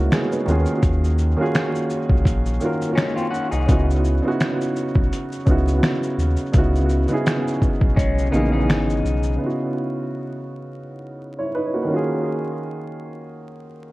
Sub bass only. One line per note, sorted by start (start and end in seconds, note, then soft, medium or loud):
0.47 0.66 D#2 loud
0.83 1.35 D#2 loud
2.10 2.24 C2 medium
2.26 2.59 A#1 medium
3.52 3.67 C2 medium
3.69 4.21 C#2 loud
4.96 5.10 B1 medium
5.47 5.81 C#2 medium
6.18 6.37 D#2 medium
6.54 7.07 C#2 loud
7.82 8.30 B1 medium
8.33 8.70 A#1 medium
8.68 9.02 G#1 loud
9.04 9.38 B1 medium